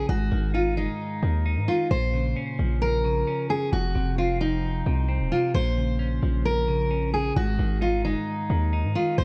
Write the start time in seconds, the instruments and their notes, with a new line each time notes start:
0.09 808-style bass G#1, clean electric guitar G#2, steel-string acoustic guitar F#4
0.31 808-style bass G#1, clean electric guitar D#3
0.54 clean electric guitar D#4, steel-string acoustic guitar F4
0.77 808-style bass F#1, clean electric guitar G#3, steel-string acoustic guitar D#4
1.23 808-style bass D#2, clean electric guitar D#3
1.46 clean electric guitar D#4
1.57 808-style bass G#2
1.68 clean electric guitar D#3, steel-string acoustic guitar F4
1.91 808-style bass A#1, clean electric guitar A#2, steel-string acoustic guitar C5
2.13 clean electric guitar C#3
2.36 clean electric guitar C#4
2.59 808-style bass A#1, clean electric guitar F3
2.82 steel-string acoustic guitar A#4
3.04 clean electric guitar C#3
3.27 clean electric guitar C#4
3.50 clean electric guitar C#3, steel-string acoustic guitar G#4
3.72 808-style bass F1, clean electric guitar F2, steel-string acoustic guitar F#4
3.95 808-style bass F1, clean electric guitar C3
4.18 clean electric guitar C4, steel-string acoustic guitar F4
4.41 clean electric guitar F3, steel-string acoustic guitar D#4
4.86 808-style bass C2, clean electric guitar C3
5.09 clean electric guitar C4
5.20 808-style bass D#1
5.32 clean electric guitar C3, steel-string acoustic guitar F4
5.54 808-style bass A#1, clean electric guitar A#2, steel-string acoustic guitar C5
5.77 clean electric guitar C#3
5.99 clean electric guitar C#4
6.22 808-style bass A#1, clean electric guitar F3
6.45 steel-string acoustic guitar A#4
6.68 clean electric guitar C#3
6.91 clean electric guitar C#4
7.14 clean electric guitar C#3, steel-string acoustic guitar G#4
7.36 808-style bass G#1, clean electric guitar G#2, steel-string acoustic guitar F#4
7.59 808-style bass G#1, clean electric guitar D#3
7.81 clean electric guitar D#4, steel-string acoustic guitar F4
8.05 808-style bass F#1, clean electric guitar G#3, steel-string acoustic guitar D#4
8.50 808-style bass D#2, clean electric guitar D#3
8.73 clean electric guitar D#4
8.84 808-style bass G#2
8.95 clean electric guitar D#3, steel-string acoustic guitar F4
9.18 808-style bass A#1, clean electric guitar A#2, steel-string acoustic guitar C5